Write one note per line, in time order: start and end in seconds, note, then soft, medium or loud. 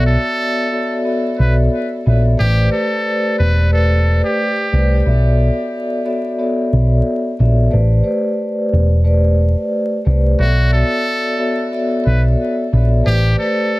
0.00 0.15 B1 loud
0.00 0.65 B3 medium
0.00 0.65 F#4 medium
0.00 0.65 A4 medium
0.00 0.65 C#5 medium
0.00 0.66 D5 medium
0.00 0.66 E5 loud
0.07 1.02 A4 loud
0.71 1.03 B3 medium
0.71 1.03 F#4 medium
0.71 1.03 A4 medium
0.71 1.03 C#5 medium
0.71 1.03 D5 medium
0.71 1.03 E5 loud
1.05 1.98 B3 medium
1.05 1.98 F#4 medium
1.05 1.98 A4 medium
1.05 1.98 C#5 medium
1.05 1.99 D5 medium
1.05 1.99 E5 loud
1.39 1.67 B1 medium
1.39 1.55 B4 medium
2.06 2.34 A#1 loud
2.06 2.37 B3 medium
2.06 2.37 F#4 medium
2.06 2.37 A4 medium
2.06 2.37 C#5 medium
2.06 2.37 D5 medium
2.06 2.37 E5 medium
2.37 2.67 A1 loud
2.37 2.69 A3 medium
2.37 2.69 G4 medium
2.37 2.69 G4 loud
2.37 2.69 B4 medium
2.37 2.69 C5 medium
2.37 2.70 D5 loud
2.70 3.64 A3 medium
2.70 3.64 G4 medium
2.70 3.35 A4 medium
2.70 3.64 B4 medium
2.70 3.64 C5 medium
2.70 3.65 D5 loud
3.38 4.20 E1 medium
3.38 3.69 B4 medium
3.71 4.64 A3 loud
3.71 4.65 G4 medium
3.71 4.21 A4 medium
3.71 4.65 B4 medium
3.71 4.65 C5 medium
3.71 4.65 D5 loud
4.24 5.02 G4 medium
4.71 5.00 C2 loud
4.71 5.03 A3 medium
4.71 5.03 G4 medium
4.71 5.03 B4 medium
4.71 5.03 C5 medium
4.71 5.03 D5 medium
5.06 5.48 B1 loud
5.06 5.98 B3 medium
5.06 5.98 F#4 medium
5.06 5.99 A4 medium
5.06 5.99 C#5 medium
5.06 5.99 D5 medium
5.06 5.99 E5 loud
6.05 6.36 B3 medium
6.05 6.36 F#4 medium
6.05 6.36 A4 medium
6.05 6.36 C#5 medium
6.05 6.37 D5 medium
6.05 6.37 E5 loud
6.39 7.31 B3 medium
6.39 7.32 F#4 medium
6.39 7.32 A4 medium
6.39 7.32 C#5 medium
6.39 7.32 D5 medium
6.39 7.32 E5 loud
6.73 7.00 B1 medium
7.39 7.67 A#1 loud
7.39 7.70 B3 medium
7.39 7.70 F#4 medium
7.39 7.70 A4 medium
7.39 7.70 C#5 medium
7.39 7.70 D5 medium
7.39 7.70 E5 medium
7.70 8.00 A1 loud
7.70 8.02 A3 medium
7.70 8.02 G4 medium
7.70 8.03 B4 medium
7.70 8.03 C5 medium
7.70 8.03 D5 loud
8.03 8.97 A3 medium
8.03 8.97 G4 medium
8.03 8.97 B4 medium
8.03 8.98 C5 medium
8.03 8.98 D5 loud
8.73 9.53 E1 medium
9.04 9.98 A3 medium
9.04 9.98 G4 medium
9.04 9.98 B4 medium
9.04 9.98 C5 medium
9.04 9.98 D5 loud
10.05 10.34 C2 medium
10.05 10.36 A3 medium
10.05 10.36 G4 medium
10.05 10.36 B4 medium
10.05 10.37 C5 medium
10.05 10.37 D5 medium
10.39 10.82 B1 loud
10.39 11.32 B3 medium
10.39 11.32 F#4 medium
10.39 10.70 F#4 loud
10.39 11.32 A4 medium
10.39 11.32 C#5 medium
10.39 11.32 D5 medium
10.39 11.32 E5 loud
10.73 11.69 A4 loud
11.38 11.69 B3 medium
11.38 11.70 F#4 medium
11.38 11.70 A4 medium
11.38 11.70 C#5 medium
11.38 11.70 D5 medium
11.38 11.70 E5 loud
11.72 12.65 B3 medium
11.72 12.65 F#4 medium
11.72 12.65 A4 medium
11.72 12.65 C#5 medium
11.72 12.65 D5 medium
11.72 12.65 E5 loud
12.06 12.34 B1 medium
12.06 12.22 B4 medium
12.72 13.00 A#1 loud
12.72 13.03 B3 medium
12.72 13.03 F#4 medium
12.72 13.03 A4 medium
12.72 13.04 C#5 medium
12.72 13.04 D5 medium
12.72 13.04 E5 medium
13.04 13.34 A1 loud
13.04 13.36 A3 medium
13.04 13.36 G4 medium
13.04 13.36 G4 loud
13.04 13.36 B4 medium
13.04 13.36 C5 medium
13.04 13.36 D5 medium
13.37 13.80 A3 medium
13.37 13.80 G4 medium
13.37 13.80 A4 medium
13.37 13.80 B4 medium
13.37 13.80 C5 medium
13.37 13.80 D5 loud